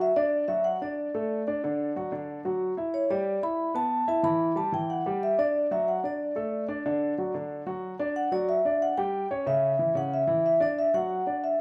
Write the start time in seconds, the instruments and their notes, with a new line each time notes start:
Already playing: grand piano F#3 F#4
0.01 vibraphone E5
0.16 grand piano D4 D5, vibraphone D5
0.48 grand piano F#3 F#4, vibraphone E5
0.64 vibraphone F#5
0.82 grand piano D4 D5, vibraphone D5
1.15 grand piano A3 A4
1.47 grand piano D4 D5
1.64 grand piano D3 D4
1.96 grand piano F#3 F#4
2.12 grand piano D3 D4
2.45 grand piano F#3 F#4
2.77 grand piano E4 E5
2.94 vibraphone C#5
3.10 grand piano G3 G4, vibraphone D5
3.43 grand piano E4 E5, vibraphone B5
3.74 grand piano B3 B4, vibraphone A5
4.08 grand piano E4 E5, vibraphone A5
4.23 grand piano E3 E4, vibraphone B5
4.56 grand piano G3 G4, vibraphone A5
4.72 grand piano E3 E4, vibraphone G5
4.90 vibraphone F#5
5.06 grand piano G3 G4
5.23 vibraphone E5
5.39 grand piano D4 D5, vibraphone D5
5.71 grand piano F#3 F#4, vibraphone E5
5.88 vibraphone F#5
6.04 grand piano D4 D5, vibraphone D5
6.36 grand piano A3 A4
6.68 grand piano D4 D5
6.86 grand piano D3 D4
7.18 grand piano F#3 F#4
7.34 grand piano D3 D4
7.66 grand piano F#3 F#4
7.99 grand piano D4 D5
8.16 vibraphone F#5
8.32 grand piano F#3 F#4, vibraphone D5
8.49 vibraphone E5
8.65 grand piano D4 D5
8.82 vibraphone F#5
8.98 grand piano G3 G4, vibraphone G5
9.31 grand piano C#4 C#5
9.46 grand piano C#3 C#4, vibraphone E5
9.79 grand piano E3 E4
9.95 grand piano C#3 C#4, vibraphone F#5
10.14 vibraphone E5
10.27 grand piano E3 E4
10.46 vibraphone E5
10.60 grand piano D4 D5, vibraphone D5
10.79 vibraphone E5
10.94 grand piano F#3 F#4, vibraphone F#5
11.27 grand piano D4 D5
11.44 vibraphone E5